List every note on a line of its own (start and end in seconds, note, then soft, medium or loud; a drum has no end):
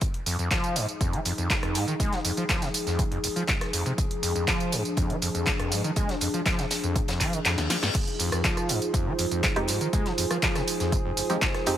0.01 7.91 F3 medium
0.01 3.94 D#4 medium
0.01 7.91 G#4 loud
0.01 kick loud
0.01 closed hi-hat medium
0.01 tambourine soft
0.14 closed hi-hat soft
0.26 0.37 F2 medium
0.26 closed hi-hat medium
0.26 open hi-hat loud
0.26 tambourine medium
0.39 0.49 F2 medium
0.39 closed hi-hat soft
0.39 tambourine soft
0.51 0.77 F3 medium
0.51 kick loud
0.51 snare loud
0.51 clap loud
0.51 closed hi-hat medium
0.51 tambourine soft
0.64 closed hi-hat soft
0.64 tambourine soft
0.76 0.86 G#2 loud
0.76 closed hi-hat medium
0.76 open hi-hat loud
0.76 tambourine medium
0.89 closed hi-hat soft
0.89 tambourine soft
1.01 1.15 F2 medium
1.01 kick loud
1.01 closed hi-hat medium
1.01 tambourine soft
1.13 1.20 F3 medium
1.13 closed hi-hat soft
1.25 1.32 F2 medium
1.25 closed hi-hat medium
1.25 open hi-hat loud
1.25 tambourine medium
1.38 1.48 F2 medium
1.38 closed hi-hat soft
1.38 tambourine soft
1.50 1.54 F3 medium
1.50 kick loud
1.50 snare loud
1.50 clap loud
1.50 closed hi-hat medium
1.50 tambourine soft
1.63 1.76 F2 medium
1.63 cross-stick medium
1.63 closed hi-hat soft
1.74 1.85 G#2 loud
1.74 snare soft
1.74 closed hi-hat medium
1.74 open hi-hat loud
1.74 tambourine medium
1.88 1.94 D#3 loud
1.88 closed hi-hat soft
1.88 tambourine soft
2.00 2.14 G#3 medium
2.00 kick loud
2.00 closed hi-hat medium
2.00 tambourine soft
2.12 2.19 F3 medium
2.12 snare soft
2.12 closed hi-hat soft
2.25 2.32 F2 medium
2.25 closed hi-hat medium
2.25 open hi-hat loud
2.25 tambourine medium
2.37 2.44 F3 loud
2.37 closed hi-hat soft
2.37 tambourine soft
2.49 2.64 F3 medium
2.49 kick loud
2.49 snare loud
2.49 clap loud
2.49 closed hi-hat medium
2.49 tambourine soft
2.62 2.69 C3 loud
2.62 snare medium
2.62 closed hi-hat soft
2.62 tambourine soft
2.74 closed hi-hat medium
2.74 open hi-hat loud
2.74 tambourine medium
2.87 3.00 F2 loud
2.87 snare soft
2.87 closed hi-hat soft
2.87 tambourine soft
2.99 3.03 G#2 loud
2.99 kick loud
2.99 closed hi-hat medium
2.99 tambourine soft
3.11 3.18 F2 medium
3.11 closed hi-hat soft
3.24 3.28 F1 medium
3.24 closed hi-hat medium
3.24 open hi-hat loud
3.24 tambourine medium
3.36 3.43 F3 loud
3.36 closed hi-hat soft
3.36 tambourine soft
3.48 3.53 F3 medium
3.48 kick loud
3.48 snare loud
3.48 clap loud
3.48 closed hi-hat medium
3.48 tambourine soft
3.61 cross-stick medium
3.61 snare soft
3.61 closed hi-hat soft
3.73 3.84 F2 medium
3.73 closed hi-hat medium
3.73 open hi-hat loud
3.73 tambourine medium
3.86 3.93 C3 loud
3.86 closed hi-hat soft
3.86 tambourine soft
3.98 7.91 D4 medium
3.98 kick loud
3.98 closed hi-hat medium
3.98 tambourine soft
4.11 closed hi-hat soft
4.23 4.33 F2 medium
4.23 closed hi-hat medium
4.23 open hi-hat loud
4.23 tambourine medium
4.36 4.46 F2 medium
4.36 closed hi-hat soft
4.36 tambourine soft
4.48 4.74 F3 medium
4.48 kick loud
4.48 snare loud
4.48 clap loud
4.48 closed hi-hat medium
4.48 tambourine soft
4.60 closed hi-hat soft
4.60 tambourine soft
4.72 4.83 G#2 loud
4.72 closed hi-hat medium
4.72 open hi-hat loud
4.72 tambourine medium
4.85 closed hi-hat soft
4.85 tambourine soft
4.97 5.11 F2 medium
4.97 kick loud
4.97 closed hi-hat medium
4.97 tambourine soft
5.10 5.17 F3 medium
5.10 closed hi-hat soft
5.22 5.29 F2 medium
5.22 closed hi-hat medium
5.22 open hi-hat medium
5.22 tambourine medium
5.35 5.45 F2 medium
5.35 closed hi-hat soft
5.35 tambourine soft
5.46 5.51 F3 medium
5.46 kick loud
5.46 snare loud
5.46 clap loud
5.46 closed hi-hat medium
5.46 tambourine soft
5.59 5.73 F2 medium
5.59 cross-stick medium
5.59 closed hi-hat soft
5.71 5.82 G#2 loud
5.71 snare soft
5.71 closed hi-hat medium
5.71 open hi-hat loud
5.71 tambourine medium
5.84 5.91 D#3 loud
5.84 closed hi-hat soft
5.84 tambourine soft
5.96 6.11 G#3 medium
5.96 kick loud
5.96 closed hi-hat medium
5.96 tambourine soft
6.09 6.16 F3 medium
6.09 snare soft
6.09 closed hi-hat soft
6.21 6.28 F2 medium
6.21 closed hi-hat medium
6.21 open hi-hat loud
6.21 tambourine medium
6.34 6.41 F3 loud
6.34 closed hi-hat soft
6.34 tambourine soft
6.46 6.60 F3 medium
6.46 kick loud
6.46 snare loud
6.46 clap loud
6.46 closed hi-hat medium
6.46 tambourine soft
6.59 6.65 C3 loud
6.59 snare medium
6.59 closed hi-hat soft
6.59 tambourine soft
6.71 snare loud
6.71 closed hi-hat medium
6.71 open hi-hat loud
6.71 tambourine medium
6.83 6.97 F2 loud
6.83 closed hi-hat soft
6.83 tambourine soft
6.96 7.00 G#2 loud
6.96 kick loud
6.96 closed hi-hat medium
6.96 tambourine soft
6.96 reverse cymbal medium
7.08 7.22 F2 medium
7.08 snare loud
7.08 closed hi-hat medium
7.08 closed hi-hat soft
7.08 tambourine soft
7.20 7.34 F3 loud
7.20 kick medium
7.20 clap medium
7.20 open hi-hat loud
7.20 tambourine medium
7.33 7.40 D#3 medium
7.33 closed hi-hat medium
7.33 closed hi-hat soft
7.33 tambourine soft
7.45 7.56 F2 loud
7.45 snare loud
7.45 clap loud
7.45 closed hi-hat medium
7.45 tambourine soft
7.58 7.68 D#2 medium
7.58 snare soft
7.58 snare medium
7.58 closed hi-hat soft
7.58 tambourine soft
7.70 7.77 F3 medium
7.70 snare medium
7.70 closed hi-hat medium
7.70 open hi-hat loud
7.70 tambourine medium
7.82 7.89 G2 medium
7.82 snare medium
7.82 closed hi-hat soft
7.82 tambourine soft
7.95 11.78 F3 medium
7.95 11.78 D#4 medium
7.95 11.78 F4 medium
7.95 11.78 G#4 medium
7.95 kick loud
7.95 closed hi-hat loud
7.95 closed hi-hat medium
7.95 tambourine soft
7.95 crash loud
8.08 closed hi-hat soft
8.19 8.30 F2 medium
8.19 closed hi-hat medium
8.19 open hi-hat loud
8.19 tambourine medium
8.26 11.78 C5 medium
8.32 8.42 F2 medium
8.32 cross-stick medium
8.32 closed hi-hat medium
8.32 tambourine soft
8.44 8.71 F3 medium
8.44 kick loud
8.44 snare loud
8.44 clap loud
8.44 closed hi-hat medium
8.44 tambourine soft
8.57 cross-stick medium
8.57 closed hi-hat soft
8.57 tambourine soft
8.69 8.80 G#2 loud
8.69 closed hi-hat medium
8.69 open hi-hat loud
8.69 tambourine medium
8.82 closed hi-hat medium
8.82 tambourine soft
8.94 9.08 F2 medium
8.94 kick loud
8.94 closed hi-hat loud
8.94 closed hi-hat medium
8.94 tambourine soft
9.06 9.13 F3 medium
9.18 9.26 F2 medium
9.18 closed hi-hat medium
9.18 open hi-hat loud
9.18 tambourine medium
9.31 9.41 F2 medium
9.31 closed hi-hat medium
9.31 tambourine soft
9.43 9.48 F3 medium
9.43 kick loud
9.43 snare loud
9.43 clap loud
9.43 closed hi-hat medium
9.43 tambourine soft
9.56 9.70 F2 medium
9.56 9.69 G#3 loud
9.56 9.69 C4 medium
9.56 9.69 D#4 loud
9.56 9.69 G4 loud
9.56 cross-stick medium
9.56 closed hi-hat soft
9.68 9.79 G#2 loud
9.68 snare medium
9.68 closed hi-hat medium
9.68 open hi-hat loud
9.68 tambourine medium
9.81 9.88 D#3 loud
9.81 closed hi-hat medium
9.81 tambourine soft
9.86 11.78 G#5 medium
9.93 10.07 G#3 medium
9.93 kick loud
9.93 closed hi-hat medium
9.93 tambourine soft
10.06 10.13 F3 medium
10.06 snare soft
10.06 closed hi-hat soft
10.18 10.25 F2 medium
10.18 closed hi-hat medium
10.18 open hi-hat loud
10.18 tambourine medium
10.31 10.37 F3 loud
10.31 cross-stick medium
10.31 closed hi-hat medium
10.31 tambourine soft
10.42 10.57 F3 medium
10.42 kick loud
10.42 snare loud
10.42 clap loud
10.42 closed hi-hat medium
10.42 tambourine soft
10.55 10.62 C3 loud
10.55 cross-stick medium
10.55 snare medium
10.55 closed hi-hat soft
10.55 tambourine soft
10.68 closed hi-hat medium
10.68 open hi-hat loud
10.68 tambourine medium
10.80 10.94 F2 loud
10.80 snare soft
10.80 closed hi-hat medium
10.80 tambourine soft
10.92 10.97 G#2 loud
10.92 kick loud
10.92 closed hi-hat medium
10.92 tambourine soft
11.05 11.12 F2 medium
11.17 11.21 F1 medium
11.17 closed hi-hat medium
11.17 open hi-hat loud
11.17 tambourine medium
11.29 11.36 F3 loud
11.29 11.38 G#3 medium
11.29 11.38 C4 medium
11.29 11.38 D#4 medium
11.29 11.38 G4 medium
11.29 closed hi-hat soft
11.29 closed hi-hat medium
11.29 tambourine soft
11.41 11.46 F3 medium
11.41 kick loud
11.41 snare loud
11.41 clap loud
11.41 closed hi-hat medium
11.41 tambourine soft
11.54 cross-stick medium
11.54 snare soft
11.54 closed hi-hat soft
11.66 11.77 F2 medium
11.66 11.75 G#3 loud
11.66 11.75 C4 medium
11.66 11.75 D#4 medium
11.66 11.75 G4 loud
11.66 closed hi-hat medium
11.66 open hi-hat loud
11.66 tambourine medium